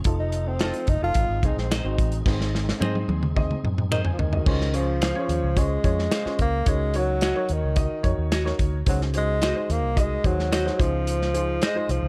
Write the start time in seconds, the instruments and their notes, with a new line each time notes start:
Already playing: tonewheel organ F3
0.04 fingered electric bass F1, tonewheel organ A3 D#4, upright piano D#4 F4 A4, kick, closed hi-hat
0.20 tenor saxophone D#4
0.32 closed hi-hat
0.48 tenor saxophone C4
0.59 upright piano D#4 F4 A4, clean electric guitar F4 A4 D#5, finger snap, snare, closed hi-hat
0.74 closed hi-hat
0.87 fingered electric bass F#1, tenor saxophone D#4, kick, closed hi-hat
1.02 fingered electric bass F1, upright piano D#4 F4 A4, tenor saxophone F4
1.14 fingered electric bass G#1, upright piano G#2, tonewheel organ G#3 C4 D#4, kick, closed hi-hat
1.29 fingered electric bass G#1
1.43 fingered electric bass C2, upright piano C4 D#4 G#4, tenor saxophone D#4, kick, closed hi-hat
1.57 fingered electric bass A#1, tenor saxophone C4, snare
1.71 tenor saxophone D#4, clean electric guitar G#4 C5 D#5, finger snap, snare, closed hi-hat
1.84 fingered electric bass G#1, upright piano C4 D#4 F#4
1.98 fingered electric bass A1, kick, closed hi-hat
2.12 closed hi-hat
2.25 fingered electric bass G#1, upright piano G#2 C4 D#4 G#4 B4, tonewheel organ G#3 C4 D#4, kick, snare, crash
2.33 upright piano C5
2.41 snare
2.55 snare
2.69 snare
2.80 fingered electric bass G#2, upright piano C4 D#4 G#4 C5, clean electric guitar G#4 C5 D#5, finger snap, high tom
2.95 high tom
3.08 fingered electric bass D#2, high tom
3.23 mid tom
3.36 upright piano C4 D#4 G#4 D#5, kick, mid tom
3.51 mid tom
3.64 fingered electric bass F#2, mid tom
3.78 mid tom
3.91 tenor saxophone D#3, clean electric guitar G#4 C5 D#5, upright piano A#5, finger snap, mid tom
4.05 upright piano C5 G#5, floor tom
4.13 tenor saxophone F3
4.19 fingered electric bass D2, tenor saxophone D#3, floor tom
4.33 upright piano F#4 D#5, floor tom
4.46 fingered electric bass C#2, upright piano C#3 C#4 F4 G#4 C5, kick, crash
4.61 snare
4.73 tenor saxophone F3, upright piano C#4 F4 G#4 C5, closed hi-hat
5.02 clean electric guitar G#4 C5 F5, finger snap, snare, closed hi-hat
5.15 upright piano C#4 F4 G#4 C#5
5.29 fingered electric bass D#2, closed hi-hat
5.43 fingered electric bass C#2
5.56 tenor saxophone G#3, upright piano C#4 F4 G#4 C5, kick, closed hi-hat
5.84 fingered electric bass F2, upright piano C#4 F4 G#4 C#5, kick, closed hi-hat
5.99 snare
6.11 clean electric guitar G#4 C5 F5, finger snap, snare, closed hi-hat
6.25 upright piano C#4 F4 G#4 C5, muted fingered electric bass stroke, snare
6.39 fingered electric bass C#2, tenor saxophone A#3, kick, closed hi-hat
6.66 fingered electric bass C#2, upright piano C#3 D#4 F#4 A#4 C#5, tenor saxophone G#3, kick, closed hi-hat
6.94 tenor saxophone F#3, upright piano D#4 F#4 A#4 C#5, closed hi-hat
7.21 clean electric guitar F#4 C#5 D#5, finger snap, snare, closed hi-hat
7.35 upright piano D#4 F#4 A#4 C#5
7.49 fingered electric bass D#2, closed hi-hat
7.53 tenor saxophone D#3
7.64 fingered electric bass C#2
7.76 upright piano D#4 F#4 A#4 D#5, kick, closed hi-hat
8.03 fingered electric bass F2, upright piano D#4 F#4 A#4 C#5, kick, closed hi-hat
8.18 fingered electric bass D#2
8.32 clean electric guitar F#4 C#5 D#5, finger snap, snare, closed hi-hat
8.44 upright piano D#4 F#4 A#4 C#5, snare
8.59 fingered electric bass D2, kick, closed hi-hat
8.86 fingered electric bass C#2, upright piano C#3 D#4 F#4 G#4 C5, tenor saxophone F#3, kick, closed hi-hat
9.02 snare
9.13 upright piano D#4 F#4 G#4 C5, closed hi-hat
9.18 tenor saxophone G#3
9.42 clean electric guitar F#4 C5 D#5, finger snap, snare, closed hi-hat
9.55 upright piano D#4 F#4 G#4 C5
9.69 fingered electric bass D#2, tenor saxophone A#3, closed hi-hat
9.83 fingered electric bass C2
9.96 tenor saxophone G#3, upright piano D#4 F#4 G#4 D#5, kick, closed hi-hat
10.24 fingered electric bass D#2, tenor saxophone F#3, upright piano D#4 F#4 G#4 C5, kick, closed hi-hat
10.39 snare
10.52 clean electric guitar F#4 C5 D#5, finger snap, snare, closed hi-hat
10.65 upright piano D#4 F#4 G#4 C5, snare
10.79 fingered electric bass C#2, upright piano C#3 D#4 F4 G#4 C5, tenor saxophone F3, kick, closed hi-hat
11.07 closed hi-hat
11.22 snare
11.33 upright piano D#4 F4 G#4 C5, closed hi-hat
11.62 tenor saxophone G#3, clean electric guitar G#4 C5 D#5, finger snap, snare, closed hi-hat
11.75 upright piano D#4 F4 G#4 C5
11.89 fingered electric bass C2, tenor saxophone F3, closed hi-hat
12.03 fingered electric bass C#2